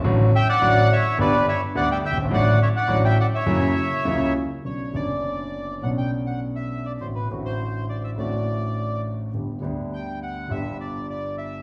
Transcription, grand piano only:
X:1
M:4/4
L:1/16
Q:1/4=103
K:D
V:1 name="Grand piano" clef=bass
[A,,,A,,D,F,A,F]2 z2 [A,,,A,,D,F,A,F]2 z2 [G,,,G,,D,G,B,G]2 z2 [D,,D,G,B,G]2 z/2 F,,,/2 G,,,/2 ^G,,,/2 | [A,,,A,,D,F,A,F]2 z2 [A,,,A,,D,F,A,F]2 z2 [F,,C,F,^A,E]2 z2 [C,,C,F,A,E]2 z2 | [K:Bm] [B,,,B,,C,F,B,D]2 [F,,,F,,D,F,B,D]6 [B,,,B,,F,B,CD]8 | [A,,,A,,D,A,=CF]2 [A,,,A,,D,A,CF]6 [A,,,A,,D,A,CF]8 |
[G,,,G,,D,G,B,G]2 [D,,D,G,B,G]6 [G,,,G,,D,G,B,G]8 |]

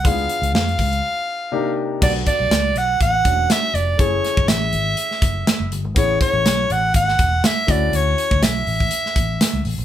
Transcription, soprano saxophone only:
X:1
M:4/4
L:1/8
Q:"Swing 16ths" 1/4=122
K:Bdor
V:1 name="Soprano saxophone"
^e2 e4- e z | d d2 f f2 e d | c2 e4- e z | c c2 f f2 e d |
c2 e4- e z |]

